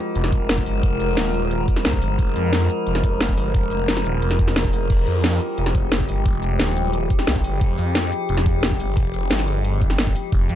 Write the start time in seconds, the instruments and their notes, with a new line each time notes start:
Already playing: synth drone F3 G#3 A#4
0.15 detuned saw bass F1, closed hi-hat
0.24 snare
0.32 detuned saw bass F1, kick, closed hi-hat, shaker
0.49 snare, closed hi-hat
0.58 kick, shaker
0.66 detuned saw bass G1, open hi-hat, shaker
0.83 detuned saw bass F1, kick, closed hi-hat
1.00 detuned saw bass F1, closed hi-hat, shaker
1.17 detuned saw bass D#1, snare, closed hi-hat
1.26 shaker
1.34 closed hi-hat, shaker
1.51 closed hi-hat
1.68 kick, closed hi-hat, shaker
1.76 snare
1.85 detuned saw bass C2, snare, closed hi-hat
1.93 kick, shaker
2.02 detuned saw bass G1, open hi-hat, shaker
2.19 detuned saw bass F1, kick, closed hi-hat
2.36 detuned saw bass F2, closed hi-hat, shaker
2.53 snare, closed hi-hat
2.61 shaker
2.70 closed hi-hat, shaker
2.87 detuned saw bass F1, closed hi-hat
2.95 snare
3.04 detuned saw bass F1, kick, closed hi-hat, shaker
3.21 snare, closed hi-hat
3.29 kick, shaker
3.37 detuned saw bass G1, open hi-hat, shaker
3.54 detuned saw bass F1, kick, closed hi-hat
3.63 shaker
3.71 detuned saw bass F1, closed hi-hat, shaker
3.88 detuned saw bass F1, snare, closed hi-hat
3.97 snare, shaker
4.05 detuned saw bass D#1, closed hi-hat, shaker
4.22 detuned saw bass F1, closed hi-hat
4.31 snare, shaker
4.39 kick, closed hi-hat, shaker
4.48 snare
4.56 snare, closed hi-hat
4.65 kick, shaker
4.73 detuned saw bass F1, open hi-hat, shaker
4.90 detuned saw bass F1, synth drone G4, kick, closed hi-hat, crash
5.07 detuned saw bass F2, closed hi-hat, shaker
5.24 snare, closed hi-hat
5.32 shaker
5.41 closed hi-hat, shaker
5.58 detuned saw bass F1, closed hi-hat
5.66 snare
5.75 detuned saw bass F1, kick, closed hi-hat, shaker
5.92 snare, closed hi-hat
6.00 kick, shaker
6.09 detuned saw bass G1, open hi-hat, shaker
6.26 detuned saw bass F1, kick, closed hi-hat
6.43 detuned saw bass F1, closed hi-hat, shaker
6.59 detuned saw bass D#1, snare, closed hi-hat
6.68 shaker
6.76 closed hi-hat, shaker
6.93 closed hi-hat
7.10 kick, closed hi-hat, shaker
7.19 snare
7.27 detuned saw bass C2, snare, closed hi-hat
7.36 kick, shaker
7.44 detuned saw bass G1, open hi-hat, shaker
7.61 detuned saw bass F1, kick, closed hi-hat
7.78 detuned saw bass F2, closed hi-hat, shaker
7.95 snare, closed hi-hat
8.04 shaker
8.12 closed hi-hat, shaker
8.29 detuned saw bass F1, closed hi-hat
8.37 snare
8.46 detuned saw bass F1, kick, closed hi-hat, shaker
8.63 snare, closed hi-hat
8.71 kick, shaker
8.80 detuned saw bass G1, open hi-hat, shaker
8.97 detuned saw bass F1, kick, closed hi-hat
9.14 detuned saw bass F1, closed hi-hat, shaker
9.31 detuned saw bass G1, snare, closed hi-hat
9.39 snare, shaker
9.48 closed hi-hat, shaker
9.65 closed hi-hat
9.81 kick, closed hi-hat, shaker
9.90 snare
9.98 snare, closed hi-hat
10.07 kick, shaker
10.15 open hi-hat, shaker
10.32 detuned saw bass F1, synth drone C5, kick, closed hi-hat
10.49 detuned saw bass F2, closed hi-hat, shaker